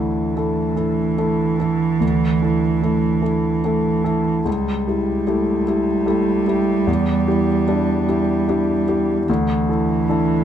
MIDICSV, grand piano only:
0, 0, Header, 1, 2, 480
1, 0, Start_track
1, 0, Tempo, 819672
1, 1183, Time_signature, 3, 2, 24, 8
1, 2614, Tempo, 803213
1, 6185, End_track
2, 0, Start_track
2, 0, Title_t, "Grand piano"
2, 0, Program_c, 0, 0
2, 0, Control_c, 0, 64, 127
2, 0, Note_on_c, 0, 38, 36
2, 0, Note_on_c, 0, 64, 24
2, 0, Note_on_c, 0, 69, 26
2, 190, Note_off_c, 0, 64, 0
2, 191, Note_off_c, 0, 69, 0
2, 212, Note_on_c, 0, 64, 26
2, 214, Note_on_c, 0, 57, 27
2, 220, Note_on_c, 0, 69, 27
2, 431, Note_off_c, 0, 64, 0
2, 432, Note_off_c, 0, 57, 0
2, 435, Note_off_c, 0, 69, 0
2, 448, Note_on_c, 0, 64, 27
2, 448, Note_on_c, 0, 69, 30
2, 670, Note_off_c, 0, 64, 0
2, 670, Note_off_c, 0, 69, 0
2, 689, Note_on_c, 0, 57, 30
2, 693, Note_on_c, 0, 64, 29
2, 693, Note_on_c, 0, 69, 31
2, 913, Note_off_c, 0, 57, 0
2, 915, Note_off_c, 0, 64, 0
2, 915, Note_off_c, 0, 69, 0
2, 934, Note_on_c, 0, 64, 27
2, 935, Note_on_c, 0, 69, 29
2, 1156, Note_off_c, 0, 64, 0
2, 1157, Note_off_c, 0, 69, 0
2, 1173, Note_off_c, 0, 38, 0
2, 1173, Note_on_c, 0, 38, 35
2, 1193, Control_c, 0, 64, 0
2, 1304, Control_c, 0, 64, 127
2, 1410, Note_off_c, 0, 38, 0
2, 1419, Note_on_c, 0, 64, 26
2, 1419, Note_on_c, 0, 69, 27
2, 1637, Note_off_c, 0, 64, 0
2, 1637, Note_off_c, 0, 69, 0
2, 1653, Note_on_c, 0, 64, 28
2, 1657, Note_on_c, 0, 57, 27
2, 1660, Note_on_c, 0, 69, 26
2, 1874, Note_off_c, 0, 64, 0
2, 1875, Note_off_c, 0, 57, 0
2, 1877, Note_off_c, 0, 69, 0
2, 1886, Note_on_c, 0, 64, 25
2, 1890, Note_on_c, 0, 69, 30
2, 2108, Note_off_c, 0, 64, 0
2, 2110, Note_off_c, 0, 69, 0
2, 2133, Note_on_c, 0, 57, 32
2, 2134, Note_on_c, 0, 64, 31
2, 2138, Note_on_c, 0, 69, 31
2, 2351, Note_off_c, 0, 57, 0
2, 2351, Note_off_c, 0, 64, 0
2, 2353, Note_off_c, 0, 69, 0
2, 2367, Note_on_c, 0, 64, 31
2, 2368, Note_on_c, 0, 69, 33
2, 2586, Note_off_c, 0, 64, 0
2, 2587, Note_off_c, 0, 69, 0
2, 2606, Note_on_c, 0, 37, 41
2, 2626, Control_c, 0, 64, 0
2, 2733, Control_c, 0, 64, 127
2, 2844, Note_off_c, 0, 37, 0
2, 2860, Note_on_c, 0, 64, 23
2, 2861, Note_on_c, 0, 67, 29
2, 3075, Note_off_c, 0, 64, 0
2, 3076, Note_off_c, 0, 67, 0
2, 3096, Note_on_c, 0, 57, 29
2, 3096, Note_on_c, 0, 64, 31
2, 3099, Note_on_c, 0, 67, 32
2, 3315, Note_off_c, 0, 57, 0
2, 3315, Note_off_c, 0, 64, 0
2, 3316, Note_off_c, 0, 67, 0
2, 3337, Note_on_c, 0, 64, 30
2, 3345, Note_on_c, 0, 67, 31
2, 3555, Note_off_c, 0, 64, 0
2, 3558, Note_off_c, 0, 67, 0
2, 3568, Note_on_c, 0, 57, 34
2, 3572, Note_on_c, 0, 64, 34
2, 3575, Note_on_c, 0, 67, 35
2, 3788, Note_off_c, 0, 57, 0
2, 3790, Note_off_c, 0, 64, 0
2, 3792, Note_off_c, 0, 67, 0
2, 3817, Note_on_c, 0, 67, 36
2, 3819, Note_on_c, 0, 64, 31
2, 4032, Note_off_c, 0, 67, 0
2, 4033, Note_off_c, 0, 64, 0
2, 4051, Note_on_c, 0, 40, 46
2, 4067, Control_c, 0, 64, 0
2, 4153, Control_c, 0, 64, 127
2, 4286, Note_off_c, 0, 40, 0
2, 4294, Note_on_c, 0, 64, 28
2, 4298, Note_on_c, 0, 67, 32
2, 4510, Note_off_c, 0, 64, 0
2, 4512, Note_off_c, 0, 67, 0
2, 4535, Note_on_c, 0, 62, 33
2, 4538, Note_on_c, 0, 67, 33
2, 4539, Note_on_c, 0, 64, 32
2, 4750, Note_off_c, 0, 62, 0
2, 4752, Note_off_c, 0, 64, 0
2, 4752, Note_off_c, 0, 67, 0
2, 4780, Note_on_c, 0, 64, 35
2, 4781, Note_on_c, 0, 67, 37
2, 4993, Note_off_c, 0, 64, 0
2, 4993, Note_off_c, 0, 67, 0
2, 5017, Note_on_c, 0, 62, 37
2, 5019, Note_on_c, 0, 64, 36
2, 5023, Note_on_c, 0, 67, 42
2, 5231, Note_off_c, 0, 62, 0
2, 5232, Note_off_c, 0, 64, 0
2, 5235, Note_off_c, 0, 67, 0
2, 5255, Note_on_c, 0, 64, 35
2, 5257, Note_on_c, 0, 67, 36
2, 5470, Note_off_c, 0, 64, 0
2, 5472, Note_off_c, 0, 67, 0
2, 5499, Note_on_c, 0, 38, 51
2, 5503, Control_c, 0, 64, 0
2, 5597, Control_c, 0, 64, 127
2, 5729, Note_off_c, 0, 38, 0
2, 5738, Note_on_c, 0, 64, 28
2, 5742, Note_on_c, 0, 69, 31
2, 5951, Note_off_c, 0, 64, 0
2, 5954, Note_off_c, 0, 69, 0
2, 5977, Note_on_c, 0, 62, 30
2, 5978, Note_on_c, 0, 64, 35
2, 5984, Note_on_c, 0, 69, 33
2, 6185, Note_off_c, 0, 62, 0
2, 6185, Note_off_c, 0, 64, 0
2, 6185, Note_off_c, 0, 69, 0
2, 6185, End_track
0, 0, End_of_file